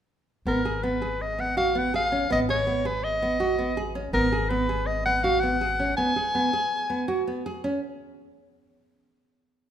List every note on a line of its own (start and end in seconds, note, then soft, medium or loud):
0.46 2.26 G#1 medium
0.46 0.62 B3 medium
0.46 0.85 A#4 medium
0.65 0.80 G#4 medium
0.83 0.98 B3 medium
0.83 1.23 B4 medium
1.02 1.31 G#4 medium
1.22 1.42 D#5 medium
1.39 1.53 B3 medium
1.39 1.57 F#5 medium
1.57 1.72 F#4 medium
1.57 1.80 F5 medium
1.75 1.90 B3 medium
1.75 1.95 F#5 medium
1.94 2.09 G#4 medium
1.94 2.29 F5 medium
2.12 2.27 C#4 medium
2.30 4.10 G#1 medium
2.30 2.45 B3 medium
2.30 2.40 D#5 medium
2.49 2.64 G#4 medium
2.49 2.88 C#5 medium
2.67 2.82 B3 medium
2.85 3.15 G#4 medium
2.85 3.05 B4 medium
3.04 3.95 D#5 medium
3.22 3.37 B3 medium
3.40 3.55 F#4 medium
3.58 3.73 B3 medium
3.77 3.92 G#4 medium
3.95 4.10 C#4 medium
4.13 5.93 G#1 medium
4.13 4.28 B3 medium
4.13 4.51 A#4 medium
4.32 4.47 G#4 medium
4.50 4.65 B3 medium
4.50 4.88 B4 medium
4.69 4.98 G#4 medium
4.87 5.05 D#5 medium
5.06 5.21 B3 medium
5.06 5.25 F#5 medium
5.24 5.39 F#4 medium
5.24 5.42 F5 medium
5.40 5.57 B3 medium
5.40 5.96 F#5 medium
5.61 5.76 G#4 medium
5.80 5.94 C#4 medium
5.97 6.12 B3 medium
5.97 7.42 G#5 medium
6.16 6.31 G#4 medium
6.35 6.49 B3 medium
6.53 6.83 G#4 medium
6.90 7.05 B3 medium
7.08 7.23 F#4 medium
7.27 7.42 B3 medium
7.46 7.61 G#4 medium
7.64 7.80 C#4 medium